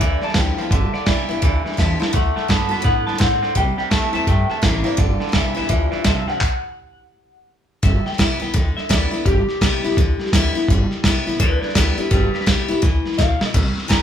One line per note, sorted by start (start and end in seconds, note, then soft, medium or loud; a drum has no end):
0.00 0.19 D2 medium
0.00 0.20 G2 medium
0.00 0.69 D3 medium
0.00 0.20 E3 loud
0.00 0.21 D5 loud
0.22 0.34 G2 medium
0.22 0.34 E3 medium
0.22 0.38 A5 loud
0.22 muted upright bass stroke medium
0.22 snare soft
0.28 snare soft
0.34 0.55 D2 medium
0.34 0.55 G2 medium
0.34 0.56 F3 medium
0.34 0.56 G3 medium
0.34 0.57 B3 medium
0.34 0.57 E4 medium
0.34 0.72 G5 loud
0.34 kick medium
0.34 snare loud
0.34 hi-hat pedal medium
0.57 0.70 G2 medium
0.57 0.70 F3 medium
0.57 0.72 B3 soft
0.57 0.71 E4 medium
0.57 muted upright bass stroke medium
0.57 snare soft
0.70 0.91 G1 medium
0.70 0.91 G2 medium
0.70 0.91 D3 medium
0.70 1.05 G3 medium
0.70 0.93 E5 medium
0.70 kick loud
0.70 snare soft
0.93 1.05 G2 medium
0.93 1.05 D3 medium
0.93 1.74 D5 medium
0.93 muted upright bass stroke medium
0.93 snare soft
1.06 1.27 C2 medium
1.06 1.27 G2 medium
1.06 1.27 E3 medium
1.06 1.28 G3 medium
1.06 1.28 B3 medium
1.06 1.27 E4 medium
1.06 kick medium
1.06 snare loud
1.06 hi-hat pedal medium
1.29 1.41 B1 loud
1.29 1.41 G2 medium
1.29 1.41 E3 medium
1.29 1.43 B3 soft
1.29 1.42 E4 medium
1.29 snare soft
1.42 1.62 D2 medium
1.42 1.63 G2 medium
1.42 2.11 D3 medium
1.42 1.63 E3 medium
1.42 kick loud
1.42 snare soft
1.64 1.76 G2 medium
1.64 1.77 E3 medium
1.64 muted upright bass stroke medium
1.64 snare soft
1.72 snare soft
1.77 1.98 E2 medium
1.77 1.98 G2 medium
1.77 1.98 F3 medium
1.77 1.99 G3 medium
1.77 2.00 B3 medium
1.77 1.98 E4 medium
1.77 2.15 E5 loud
1.77 kick medium
1.77 snare medium
1.77 hi-hat pedal medium
2.00 2.12 G2 medium
2.00 2.12 F3 medium
2.00 2.14 B3 soft
2.00 2.13 E4 medium
2.00 muted upright bass stroke medium
2.00 snare medium
2.13 2.34 D2 medium
2.13 2.47 D3 medium
2.13 2.34 D3 medium
2.13 2.34 A3 medium
2.13 2.50 F#5 loud
2.13 kick loud
2.13 snare soft
2.36 2.48 D3 medium
2.36 2.48 A3 medium
2.36 muted upright bass stroke medium
2.36 snare soft
2.48 2.69 G2 loud
2.48 2.70 D3 medium
2.48 2.69 D3 medium
2.48 2.71 A3 medium
2.48 2.69 B3 medium
2.48 2.70 B3 medium
2.48 2.68 F#4 medium
2.48 2.85 A5 medium
2.48 kick medium
2.48 snare loud
2.48 hi-hat pedal medium
2.69 2.83 F#2 medium
2.69 2.83 D3 medium
2.69 2.84 B3 soft
2.69 2.83 B3 medium
2.69 2.83 F#4 medium
2.69 snare soft
2.79 3.18 E3 medium
2.79 snare soft
2.84 3.04 A2 medium
2.84 3.04 D3 medium
2.84 3.05 B3 loud
2.84 3.06 F#5 loud
2.84 kick loud
2.84 snare soft
3.06 3.18 D3 medium
3.06 3.19 B3 medium
3.06 3.21 A5 loud
3.06 muted upright bass stroke medium
3.06 snare soft
3.14 snare soft
3.18 3.40 A2 medium
3.18 3.54 D3 medium
3.18 3.40 D3 medium
3.18 3.40 C4 medium
3.18 3.54 F#5 loud
3.18 kick medium
3.18 snare loud
3.18 hi-hat pedal medium
3.42 3.54 D3 medium
3.42 3.54 C4 medium
3.42 muted upright bass stroke medium
3.42 snare soft
3.55 3.76 C2 medium
3.55 3.76 C3 medium
3.55 4.24 C3 medium
3.55 3.76 G3 loud
3.55 3.77 G5 loud
3.55 kick loud
3.55 snare soft
3.77 3.89 C3 medium
3.77 3.90 G3 medium
3.77 3.84 G5 medium
3.77 muted upright bass stroke medium
3.77 snare soft
3.91 4.11 C3 medium
3.91 4.13 E3 medium
3.91 4.11 A3 medium
3.91 4.13 A3 medium
3.91 4.13 C4 medium
3.91 4.12 E4 medium
3.91 4.14 A5 medium
3.91 kick medium
3.91 snare loud
3.91 hi-hat pedal medium
4.13 4.26 E2 loud
4.13 4.26 C3 medium
4.13 4.26 A3 medium
4.13 4.27 C4 soft
4.13 4.26 E4 medium
4.13 4.28 A5 loud
4.13 snare soft
4.27 4.96 G2 medium
4.27 4.47 G2 medium
4.27 4.48 C3 medium
4.27 4.48 A3 loud
4.27 4.49 G5 loud
4.27 kick loud
4.27 snare soft
4.50 4.62 C3 medium
4.50 4.62 A3 medium
4.50 4.64 A5 medium
4.50 muted upright bass stroke medium
4.50 snare soft
4.62 4.83 A1 loud
4.62 4.83 C3 medium
4.62 4.84 E3 medium
4.62 4.84 A3 medium
4.62 4.83 A#3 medium
4.62 4.85 C4 medium
4.62 4.83 E4 medium
4.62 4.87 C5 loud
4.62 kick medium
4.62 snare loud
4.62 hi-hat pedal medium
4.84 4.97 C3 medium
4.84 4.97 A#3 medium
4.84 4.98 C4 medium
4.84 4.97 E4 medium
4.84 5.36 D5 medium
4.84 snare soft
4.97 5.18 G1 medium
4.97 5.18 G2 medium
4.97 5.18 D3 loud
4.97 5.31 G3 medium
4.97 kick loud
4.97 snare soft
5.20 5.32 G2 medium
5.20 5.33 D3 medium
5.20 muted upright bass stroke medium
5.20 snare soft
5.27 snare soft
5.32 5.54 C2 loud
5.32 5.54 G2 medium
5.32 5.54 E3 medium
5.32 5.55 G3 medium
5.32 5.55 B3 medium
5.32 5.53 E4 medium
5.32 5.55 E5 medium
5.32 kick medium
5.32 snare loud
5.32 hi-hat pedal medium
5.55 5.69 B1 loud
5.55 5.68 G2 medium
5.55 5.68 E3 medium
5.55 5.69 B3 medium
5.55 5.68 E4 medium
5.55 5.69 E5 medium
5.55 snare soft
5.63 snare soft
5.69 5.90 D2 medium
5.69 5.90 G2 medium
5.69 5.90 E3 loud
5.69 6.04 F3 medium
5.69 6.05 D5 medium
5.69 kick loud
5.69 snare soft
5.91 6.03 G2 medium
5.91 6.04 E3 medium
5.91 muted upright bass stroke medium
5.91 snare soft
6.04 6.25 C2 medium
6.04 6.25 G2 medium
6.04 6.39 C3 loud
6.04 6.26 F3 medium
6.04 6.28 E5 loud
6.04 kick medium
6.04 snare loud
6.04 hi-hat pedal medium
6.28 6.40 G2 medium
6.28 6.40 F3 medium
6.28 7.48 F#5 medium
6.28 muted upright bass stroke medium
6.28 snare soft
6.41 kick loud
6.41 clap medium
7.83 8.03 G1 loud
7.83 8.17 G3 medium
7.83 8.05 E5 loud
7.83 kick loud
7.83 snare soft
8.05 8.20 G5 medium
8.05 muted upright bass stroke medium
8.05 snare soft
8.13 snare soft
8.18 8.39 C2 loud
8.18 8.40 G3 medium
8.18 8.40 B3 medium
8.18 8.38 E4 loud
8.18 8.41 E5 medium
8.18 kick medium
8.18 snare loud
8.18 hi-hat pedal medium
8.40 8.53 B1 medium
8.40 8.54 B3 soft
8.40 8.53 E4 medium
8.40 8.76 G5 loud
8.40 snare soft
8.54 8.74 D2 medium
8.54 9.23 D3 medium
8.54 kick loud
8.54 snare soft
8.77 8.90 E5 medium
8.77 muted upright bass stroke medium
8.77 snare soft
8.89 9.10 D2 loud
8.89 9.11 G3 medium
8.89 9.12 B3 loud
8.89 9.10 E4 loud
8.89 9.25 D5 loud
8.89 kick medium
8.89 snare loud
8.89 hi-hat pedal medium
9.11 9.26 B3 medium
9.11 9.25 E4 medium
9.11 muted upright bass stroke medium
9.11 snare soft
9.25 9.46 G1 medium
9.25 9.60 G3 medium
9.25 10.29 G4 loud
9.25 kick loud
9.25 snare soft
9.48 muted upright bass stroke medium
9.48 snare soft
9.61 9.81 C2 medium
9.61 9.83 G3 medium
9.61 9.83 B3 medium
9.61 9.83 E4 loud
9.61 kick loud
9.61 snare loud
9.61 hi-hat pedal medium
9.84 9.96 B1 medium
9.84 9.98 B3 soft
9.84 9.97 E4 medium
9.84 snare soft
9.91 snare soft
9.97 10.17 D2 medium
9.97 10.66 D3 medium
9.97 kick loud
9.97 snare soft
10.19 muted upright bass stroke medium
10.19 snare soft
10.26 snare soft
10.33 10.53 D2 loud
10.33 10.54 G3 loud
10.33 10.55 B3 loud
10.33 10.54 E4 loud
10.33 kick medium
10.33 snare loud
10.33 hi-hat pedal loud
10.55 10.69 B3 medium
10.55 10.68 E4 medium
10.55 muted upright bass stroke medium
10.55 snare soft
10.68 10.88 G1 loud
10.68 11.04 G3 medium
10.68 kick loud
10.68 snare soft
10.91 muted upright bass stroke medium
10.91 snare soft
11.04 11.24 C2 loud
11.04 11.26 G3 medium
11.04 11.27 B3 medium
11.04 11.26 E4 medium
11.04 kick loud
11.04 snare loud
11.04 hi-hat pedal medium
11.27 11.38 B1 loud
11.27 11.41 B3 medium
11.27 11.39 E4 medium
11.27 snare soft
11.33 snare soft
11.40 11.60 D2 medium
11.40 12.08 D3 loud
11.40 11.60 B4 loud
11.40 11.60 D5 loud
11.40 kick loud
11.40 snare soft
11.61 11.74 B4 medium
11.61 11.74 D5 medium
11.61 muted upright bass stroke medium
11.61 snare soft
11.69 snare soft
11.75 11.95 D2 loud
11.75 11.97 G3 loud
11.75 11.97 B3 loud
11.75 11.97 E4 loud
11.75 11.97 B4 medium
11.75 11.98 D5 medium
11.75 kick medium
11.75 snare loud
11.75 hi-hat pedal medium
11.97 12.11 B3 soft
11.97 12.10 E4 medium
11.97 12.10 G4 medium
11.97 12.10 B4 medium
11.97 muted upright bass stroke medium
11.97 snare soft
12.11 12.31 G1 medium
12.11 12.45 G3 medium
12.11 12.32 G4 medium
12.11 12.33 B4 loud
12.11 kick loud
12.11 snare soft
12.34 12.45 G4 medium
12.34 12.47 B4 medium
12.34 muted upright bass stroke medium
12.34 snare soft
12.40 snare soft
12.46 12.67 C2 loud
12.46 12.68 G3 medium
12.46 12.69 B3 medium
12.46 12.67 E4 medium
12.46 12.81 G4 medium
12.46 kick medium
12.46 snare loud
12.46 hi-hat pedal medium
12.68 12.82 B1 medium
12.68 12.83 B3 soft
12.68 12.82 E4 medium
12.68 snare soft
12.82 13.03 D2 medium
12.82 13.17 E3 medium
12.82 kick loud
12.82 snare soft
13.05 muted upright bass stroke medium
13.05 snare soft
13.12 snare soft
13.18 13.38 D2 loud
13.18 13.53 B2 loud
13.18 13.53 F5 loud
13.18 kick medium
13.18 snare medium
13.18 hi-hat pedal loud
13.41 muted upright bass stroke medium
13.41 snare medium
13.54 13.74 C2 loud
13.54 14.02 C3 medium
13.54 kick loud
13.54 snare soft
13.54 crash loud
13.77 muted upright bass stroke medium
13.77 snare soft
13.88 14.02 F2 medium
13.88 14.02 E3 medium
13.88 14.02 A3 medium
13.88 14.02 C4 medium
13.88 14.02 E4 medium
13.88 14.02 A#5 medium
13.88 kick medium
13.88 snare loud
13.88 hi-hat pedal loud